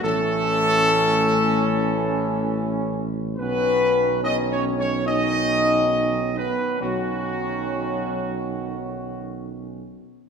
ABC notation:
X:1
M:4/4
L:1/8
Q:1/4=71
K:Bmix
V:1 name="Trumpet section"
A6- A z | B2 (3d c c d3 B | F6 z2 |]
V:2 name="French horn section"
A,6- A, z | B,2 (3D C C D3 B, | F,6 z2 |]
V:3 name="Trombone section" clef=bass
[E,C]8 | [D,C]2 [D,C]2 [D,C]4 | [D,C]6- [D,C] z |]
V:4 name="Tuba" clef=bass
A,,,8 | B,,,8 | B,,,6- B,,, z |]